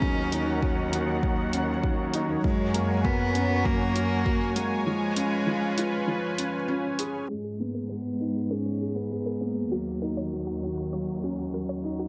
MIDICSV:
0, 0, Header, 1, 7, 480
1, 0, Start_track
1, 0, Tempo, 606061
1, 16, Time_signature, 4, 2, 24, 8
1, 9569, End_track
2, 0, Start_track
2, 0, Title_t, "Analog synth pad"
2, 0, Program_c, 0, 89
2, 0, Note_on_c, 0, 63, 80
2, 0, Note_on_c, 0, 70, 70
2, 15, Note_on_c, 0, 73, 70
2, 17, Note_on_c, 0, 78, 86
2, 1900, Note_off_c, 0, 70, 0
2, 1901, Note_off_c, 0, 63, 0
2, 1917, Note_off_c, 0, 78, 0
2, 1927, Note_on_c, 0, 66, 82
2, 1927, Note_on_c, 0, 70, 77
2, 1930, Note_on_c, 0, 80, 91
2, 3832, Note_off_c, 0, 66, 0
2, 3832, Note_off_c, 0, 70, 0
2, 3849, Note_on_c, 0, 65, 85
2, 3849, Note_on_c, 0, 71, 75
2, 5741, Note_off_c, 0, 80, 0
2, 5743, Note_off_c, 0, 73, 0
2, 5753, Note_off_c, 0, 65, 0
2, 5753, Note_off_c, 0, 71, 0
2, 5774, Note_on_c, 0, 68, 68
2, 5776, Note_on_c, 0, 63, 76
2, 5776, Note_on_c, 0, 70, 66
2, 5777, Note_on_c, 0, 80, 83
2, 7676, Note_off_c, 0, 68, 0
2, 7677, Note_off_c, 0, 80, 0
2, 7698, Note_on_c, 0, 73, 70
2, 7698, Note_on_c, 0, 78, 83
2, 9569, Note_off_c, 0, 63, 0
2, 9569, Note_off_c, 0, 70, 0
2, 9569, Note_off_c, 0, 73, 0
2, 9569, Note_off_c, 0, 78, 0
2, 9569, End_track
3, 0, Start_track
3, 0, Title_t, "Synth arpeggio sound"
3, 0, Program_c, 1, 84
3, 5895, Note_on_c, 1, 68, 63
3, 5922, Note_off_c, 1, 68, 0
3, 6136, Note_on_c, 1, 70, 63
3, 6179, Note_off_c, 1, 70, 0
3, 6252, Note_on_c, 1, 71, 73
3, 6298, Note_off_c, 1, 71, 0
3, 6497, Note_on_c, 1, 68, 69
3, 6522, Note_off_c, 1, 68, 0
3, 6738, Note_on_c, 1, 70, 71
3, 6781, Note_off_c, 1, 70, 0
3, 6856, Note_on_c, 1, 71, 70
3, 6900, Note_off_c, 1, 71, 0
3, 7097, Note_on_c, 1, 68, 65
3, 7123, Note_off_c, 1, 68, 0
3, 7335, Note_on_c, 1, 70, 66
3, 7379, Note_off_c, 1, 70, 0
3, 7454, Note_on_c, 1, 71, 64
3, 7498, Note_off_c, 1, 71, 0
3, 7696, Note_on_c, 1, 66, 73
3, 7722, Note_off_c, 1, 66, 0
3, 7935, Note_on_c, 1, 70, 64
3, 7979, Note_off_c, 1, 70, 0
3, 8056, Note_on_c, 1, 73, 65
3, 8099, Note_off_c, 1, 73, 0
3, 8292, Note_on_c, 1, 66, 69
3, 8320, Note_off_c, 1, 66, 0
3, 8536, Note_on_c, 1, 70, 61
3, 8579, Note_off_c, 1, 70, 0
3, 8656, Note_on_c, 1, 73, 72
3, 8699, Note_off_c, 1, 73, 0
3, 8899, Note_on_c, 1, 66, 66
3, 8924, Note_off_c, 1, 66, 0
3, 9140, Note_on_c, 1, 70, 70
3, 9181, Note_off_c, 1, 70, 0
3, 9260, Note_on_c, 1, 73, 69
3, 9301, Note_off_c, 1, 73, 0
3, 9499, Note_on_c, 1, 66, 70
3, 9523, Note_off_c, 1, 66, 0
3, 9569, End_track
4, 0, Start_track
4, 0, Title_t, "Cello"
4, 0, Program_c, 2, 42
4, 0, Note_on_c, 2, 61, 91
4, 731, Note_off_c, 2, 61, 0
4, 1930, Note_on_c, 2, 56, 90
4, 2409, Note_on_c, 2, 59, 98
4, 2421, Note_off_c, 2, 56, 0
4, 2888, Note_on_c, 2, 58, 103
4, 2899, Note_off_c, 2, 59, 0
4, 3606, Note_on_c, 2, 56, 103
4, 3618, Note_off_c, 2, 58, 0
4, 5291, Note_off_c, 2, 56, 0
4, 5771, Note_on_c, 2, 56, 68
4, 6008, Note_on_c, 2, 58, 66
4, 6020, Note_off_c, 2, 56, 0
4, 6240, Note_off_c, 2, 58, 0
4, 6245, Note_on_c, 2, 59, 76
4, 6733, Note_on_c, 2, 61, 87
4, 6744, Note_off_c, 2, 59, 0
4, 7088, Note_on_c, 2, 59, 76
4, 7100, Note_off_c, 2, 61, 0
4, 7458, Note_on_c, 2, 58, 79
4, 7470, Note_off_c, 2, 59, 0
4, 8177, Note_off_c, 2, 58, 0
4, 9569, End_track
5, 0, Start_track
5, 0, Title_t, "Felt piano"
5, 0, Program_c, 3, 0
5, 0, Control_c, 3, 64, 127
5, 16, Note_on_c, 3, 54, 74
5, 26, Control_c, 3, 64, 0
5, 142, Control_c, 3, 64, 127
5, 244, Note_off_c, 3, 54, 0
5, 255, Note_on_c, 3, 63, 67
5, 484, Note_off_c, 3, 63, 0
5, 497, Note_on_c, 3, 54, 70
5, 724, Note_off_c, 3, 54, 0
5, 733, Note_on_c, 3, 66, 66
5, 871, Note_off_c, 3, 66, 0
5, 974, Note_on_c, 3, 54, 72
5, 1203, Note_off_c, 3, 54, 0
5, 1213, Note_on_c, 3, 61, 66
5, 1351, Note_off_c, 3, 61, 0
5, 1452, Note_on_c, 3, 54, 68
5, 1682, Note_off_c, 3, 54, 0
5, 1693, Note_on_c, 3, 63, 74
5, 1922, Note_off_c, 3, 63, 0
5, 1931, Note_on_c, 3, 54, 79
5, 1947, Control_c, 3, 64, 0
5, 2084, Control_c, 3, 64, 127
5, 2161, Note_off_c, 3, 54, 0
5, 2171, Note_on_c, 3, 58, 71
5, 2310, Note_off_c, 3, 58, 0
5, 2412, Note_on_c, 3, 54, 69
5, 2642, Note_off_c, 3, 54, 0
5, 2649, Note_on_c, 3, 61, 67
5, 2789, Note_off_c, 3, 61, 0
5, 2890, Note_on_c, 3, 54, 75
5, 3121, Note_off_c, 3, 54, 0
5, 3131, Note_on_c, 3, 66, 69
5, 3270, Note_off_c, 3, 66, 0
5, 3372, Note_on_c, 3, 54, 72
5, 3602, Note_off_c, 3, 54, 0
5, 3611, Note_on_c, 3, 58, 67
5, 3842, Note_off_c, 3, 58, 0
5, 3853, Note_on_c, 3, 53, 79
5, 3867, Control_c, 3, 64, 0
5, 4022, Control_c, 3, 64, 127
5, 4082, Note_off_c, 3, 53, 0
5, 4089, Note_on_c, 3, 61, 73
5, 4320, Note_off_c, 3, 61, 0
5, 4331, Note_on_c, 3, 53, 72
5, 4561, Note_off_c, 3, 53, 0
5, 4575, Note_on_c, 3, 65, 69
5, 4712, Note_off_c, 3, 65, 0
5, 4812, Note_on_c, 3, 53, 71
5, 5042, Note_off_c, 3, 53, 0
5, 5056, Note_on_c, 3, 61, 69
5, 5193, Note_off_c, 3, 61, 0
5, 5292, Note_on_c, 3, 61, 95
5, 5522, Note_off_c, 3, 61, 0
5, 5535, Note_on_c, 3, 68, 71
5, 5763, Note_off_c, 3, 68, 0
5, 5777, Note_on_c, 3, 56, 58
5, 5787, Control_c, 3, 64, 0
5, 5926, Control_c, 3, 64, 127
5, 6004, Note_off_c, 3, 56, 0
5, 6017, Note_on_c, 3, 59, 59
5, 6153, Note_off_c, 3, 59, 0
5, 6256, Note_on_c, 3, 56, 56
5, 6484, Note_off_c, 3, 56, 0
5, 6496, Note_on_c, 3, 63, 59
5, 6633, Note_off_c, 3, 63, 0
5, 6736, Note_on_c, 3, 56, 58
5, 6964, Note_off_c, 3, 56, 0
5, 6977, Note_on_c, 3, 68, 55
5, 7113, Note_off_c, 3, 68, 0
5, 7216, Note_on_c, 3, 56, 56
5, 7444, Note_off_c, 3, 56, 0
5, 7454, Note_on_c, 3, 59, 58
5, 7683, Note_off_c, 3, 59, 0
5, 7695, Note_on_c, 3, 54, 62
5, 7707, Control_c, 3, 64, 0
5, 7830, Control_c, 3, 64, 127
5, 7923, Note_off_c, 3, 54, 0
5, 7935, Note_on_c, 3, 63, 60
5, 8163, Note_off_c, 3, 63, 0
5, 8177, Note_on_c, 3, 54, 57
5, 8404, Note_off_c, 3, 54, 0
5, 8417, Note_on_c, 3, 66, 60
5, 8553, Note_off_c, 3, 66, 0
5, 8660, Note_on_c, 3, 54, 63
5, 8886, Note_off_c, 3, 54, 0
5, 8896, Note_on_c, 3, 61, 54
5, 9032, Note_off_c, 3, 61, 0
5, 9136, Note_on_c, 3, 54, 57
5, 9364, Note_off_c, 3, 54, 0
5, 9375, Note_on_c, 3, 63, 57
5, 9569, Note_off_c, 3, 63, 0
5, 9569, End_track
6, 0, Start_track
6, 0, Title_t, "Cello section"
6, 0, Program_c, 4, 48
6, 16, Note_on_c, 4, 39, 90
6, 1912, Note_off_c, 4, 39, 0
6, 1934, Note_on_c, 4, 42, 92
6, 3831, Note_off_c, 4, 42, 0
6, 5777, Note_on_c, 4, 44, 73
6, 7672, Note_off_c, 4, 44, 0
6, 7694, Note_on_c, 4, 39, 76
6, 9569, Note_off_c, 4, 39, 0
6, 9569, End_track
7, 0, Start_track
7, 0, Title_t, "Drums"
7, 16, Note_on_c, 9, 36, 93
7, 95, Note_off_c, 9, 36, 0
7, 256, Note_on_c, 9, 42, 55
7, 335, Note_off_c, 9, 42, 0
7, 495, Note_on_c, 9, 36, 95
7, 574, Note_off_c, 9, 36, 0
7, 737, Note_on_c, 9, 42, 55
7, 816, Note_off_c, 9, 42, 0
7, 974, Note_on_c, 9, 36, 88
7, 1053, Note_off_c, 9, 36, 0
7, 1214, Note_on_c, 9, 42, 57
7, 1293, Note_off_c, 9, 42, 0
7, 1454, Note_on_c, 9, 36, 85
7, 1533, Note_off_c, 9, 36, 0
7, 1692, Note_on_c, 9, 42, 57
7, 1771, Note_off_c, 9, 42, 0
7, 1934, Note_on_c, 9, 36, 90
7, 2013, Note_off_c, 9, 36, 0
7, 2174, Note_on_c, 9, 42, 53
7, 2253, Note_off_c, 9, 42, 0
7, 2413, Note_on_c, 9, 36, 95
7, 2493, Note_off_c, 9, 36, 0
7, 2654, Note_on_c, 9, 42, 53
7, 2733, Note_off_c, 9, 42, 0
7, 2893, Note_on_c, 9, 36, 90
7, 2972, Note_off_c, 9, 36, 0
7, 3133, Note_on_c, 9, 42, 54
7, 3213, Note_off_c, 9, 42, 0
7, 3374, Note_on_c, 9, 36, 86
7, 3453, Note_off_c, 9, 36, 0
7, 3612, Note_on_c, 9, 42, 57
7, 3691, Note_off_c, 9, 42, 0
7, 4090, Note_on_c, 9, 42, 52
7, 4170, Note_off_c, 9, 42, 0
7, 4575, Note_on_c, 9, 42, 55
7, 4655, Note_off_c, 9, 42, 0
7, 5057, Note_on_c, 9, 42, 56
7, 5136, Note_off_c, 9, 42, 0
7, 5535, Note_on_c, 9, 42, 59
7, 5614, Note_off_c, 9, 42, 0
7, 9569, End_track
0, 0, End_of_file